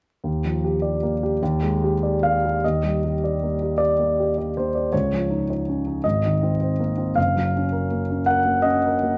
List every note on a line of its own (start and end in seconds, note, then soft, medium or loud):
0.24 1.37 D#2 soft
0.45 0.75 F3 soft
0.64 0.94 G4 soft
0.82 1.13 D5 soft
1.03 1.33 A#3 soft
1.23 1.41 G4 soft
1.42 2.60 D#2 soft
1.63 1.93 G#3 soft
1.84 2.15 G4 soft
2.03 2.36 D5 soft
2.23 2.56 A#3 soft
2.23 2.64 F5 medium
2.45 2.64 G4 soft
2.64 4.89 D#2 soft
2.64 3.79 D#5 medium
2.83 3.14 G3 soft
3.05 3.34 G4 soft
3.24 3.53 D5 soft
3.43 3.72 A#3 soft
3.62 3.91 G4 soft
3.78 4.36 D5 medium
3.99 4.28 A#3 soft
4.20 4.48 G4 soft
4.38 4.67 D5 soft
4.57 4.86 A#3 soft
4.57 4.94 C5 soft
4.75 4.93 D5 soft
4.92 6.02 C#2 soft
4.92 5.49 C#5 medium
5.13 5.42 F3 soft
5.30 5.60 D#4 soft
5.50 5.79 C#5 soft
5.69 5.98 C#4 soft
5.87 6.05 D#4 soft
6.04 7.14 G#1 soft
6.04 6.79 D#5 medium
6.25 6.54 D#3 soft
6.43 6.73 C4 soft
6.60 6.91 C5 soft
6.80 7.10 A#3 soft
6.98 7.17 C4 soft
7.15 9.18 F#1 soft
7.15 8.27 F5 medium
7.36 7.65 F#3 soft
7.56 7.85 C#4 soft
7.72 8.02 A#4 soft
7.91 8.21 A#3 soft
8.10 8.40 C#4 soft
8.26 8.58 A#4 soft
8.26 8.65 F#5 medium
8.45 8.77 A#3 soft
8.62 8.96 C#4 soft
8.62 9.18 D#5 medium
8.85 9.15 A#4 soft
9.03 9.18 A#3 soft